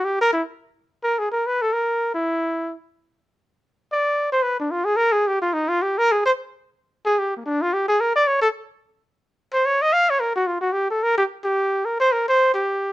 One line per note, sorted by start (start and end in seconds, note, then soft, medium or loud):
0.05 0.20 G4 medium
0.21 0.31 A#4 loud
0.33 0.42 E4 medium
1.03 1.20 A#4 medium
1.19 1.31 G#4 medium
1.31 1.48 A#4 medium
1.47 1.63 B4 medium
1.62 1.74 A4 medium
1.73 2.14 A#4 medium
2.15 2.75 E4 medium
3.92 4.30 D5 medium
4.32 4.44 C5 medium
4.43 4.58 B4 medium
4.60 4.72 D4 medium
4.71 4.86 F4 medium
4.85 4.98 G#4 loud
4.96 5.14 A#4 loud
5.12 5.29 G#4 medium
5.27 5.41 G4 medium
5.42 5.55 F4 medium
5.53 5.70 D#4 medium
5.69 5.84 F4 medium
5.82 5.99 G4 medium
5.98 6.13 A#4 loud
6.12 6.25 G#4 medium
6.25 6.31 C5 loud
7.06 7.20 G#4 medium
7.19 7.33 G4 medium
7.37 7.47 A#3 soft
7.46 7.63 D4 medium
7.62 7.75 F4 medium
7.73 7.87 G4 medium
7.88 8.02 G#4 medium
8.00 8.15 A#4 medium
8.16 8.29 D5 loud
8.27 8.41 C#5 medium
8.42 8.48 A4 loud
9.53 9.67 C5 medium
9.66 9.83 C#5 loud
9.82 9.94 D#5 loud
9.93 10.12 F5 loud
10.10 10.21 C#5 medium
10.20 10.35 A#4 medium
10.36 10.48 F#4 medium
10.47 10.60 F4 medium
10.61 10.74 F#4 medium
10.72 10.88 G4 medium
10.90 11.05 A4 medium
11.03 11.17 A#4 loud
11.18 11.24 G4 medium
11.44 11.87 G4 medium
11.85 11.99 A#4 medium
12.00 12.14 C5 loud
12.12 12.27 A#4 medium
12.28 12.54 C5 loud
12.54 12.93 G4 medium